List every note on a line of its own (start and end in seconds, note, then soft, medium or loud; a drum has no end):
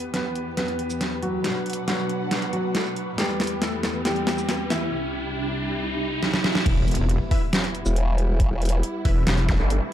0.00 1.43 E2 medium
0.00 1.43 E3 medium
0.00 1.43 B3 medium
0.00 1.43 G4 medium
0.00 4.88 B4 medium
0.00 riser medium
0.14 0.47 B3 medium
0.14 0.47 B4 medium
0.14 snare soft
0.14 closed hi-hat medium
0.35 closed hi-hat soft
0.57 1.14 B3 medium
0.57 1.14 B4 medium
0.57 snare soft
0.57 closed hi-hat medium
0.68 closed hi-hat soft
0.79 closed hi-hat medium
0.90 shaker soft
1.01 snare medium
1.01 closed hi-hat medium
1.23 1.79 F#3 medium
1.23 1.79 F#4 medium
1.23 closed hi-hat medium
1.44 3.16 B2 medium
1.44 3.16 F#3 medium
1.44 3.16 D4 medium
1.44 3.16 F#5 medium
1.44 snare medium
1.44 closed hi-hat medium
1.66 closed hi-hat medium
1.70 closed hi-hat medium
1.73 closed hi-hat medium
1.88 2.44 F#3 medium
1.88 2.44 F#4 medium
1.88 snare medium
1.88 closed hi-hat medium
2.10 closed hi-hat medium
2.31 snare medium
2.31 closed hi-hat medium
2.42 closed hi-hat soft
2.53 3.10 F#3 medium
2.53 3.10 F#4 medium
2.53 closed hi-hat medium
2.75 snare medium
2.75 closed hi-hat medium
2.96 closed hi-hat medium
3.18 4.90 E2 medium
3.18 4.90 E3 medium
3.18 3.51 G3 medium
3.18 4.90 B3 medium
3.18 6.63 G4 medium
3.18 3.51 G4 loud
3.18 snare medium
3.18 closed hi-hat medium
3.40 snare medium
3.40 closed hi-hat medium
3.44 closed hi-hat medium
3.47 closed hi-hat medium
3.62 3.95 A3 medium
3.62 3.95 A4 medium
3.62 snare medium
3.62 closed hi-hat medium
3.83 snare medium
3.83 closed hi-hat soft
4.05 4.62 G3 medium
4.05 4.62 G4 medium
4.05 snare medium
4.05 closed hi-hat medium
4.16 closed hi-hat soft
4.27 snare medium
4.27 closed hi-hat medium
4.38 shaker medium
4.49 snare medium
4.49 closed hi-hat medium
4.70 4.92 E3 medium
4.70 4.92 E4 medium
4.70 snare medium
4.70 closed hi-hat medium
4.92 6.64 C2 medium
4.92 6.64 C3 medium
4.92 6.64 G3 medium
4.92 6.64 E4 medium
6.23 snare medium
6.34 snare medium
6.44 snare medium
6.55 snare medium
6.66 6.97 E1 medium
6.66 9.93 G3 medium
6.66 9.93 B3 medium
6.66 9.93 E4 medium
6.66 kick loud
6.66 closed hi-hat medium
6.66 crash loud
6.66 impact medium
6.88 closed hi-hat medium
6.91 closed hi-hat medium
6.95 7.19 E1 medium
6.95 closed hi-hat medium
7.09 closed hi-hat medium
7.31 7.42 E4 medium
7.31 7.42 B4 medium
7.31 7.42 E5 loud
7.31 kick loud
7.31 open hi-hat medium
7.53 snare loud
7.53 closed hi-hat medium
7.64 closed hi-hat soft
7.75 closed hi-hat medium
7.86 8.49 E1 loud
7.86 shaker medium
7.96 closed hi-hat medium
8.18 closed hi-hat medium
8.40 kick loud
8.40 closed hi-hat medium
8.51 8.82 E1 loud
8.62 closed hi-hat medium
8.65 closed hi-hat medium
8.69 closed hi-hat medium
8.83 closed hi-hat medium
9.05 9.25 E1 loud
9.05 9.22 E4 loud
9.05 9.22 B4 medium
9.05 9.22 E5 loud
9.05 kick loud
9.05 open hi-hat medium
9.27 9.58 E1 loud
9.27 snare loud
9.27 closed hi-hat medium
9.38 closed hi-hat soft
9.49 kick loud
9.49 snare medium
9.49 closed hi-hat medium
9.49 zap medium
9.60 9.80 G1 loud
9.70 closed hi-hat medium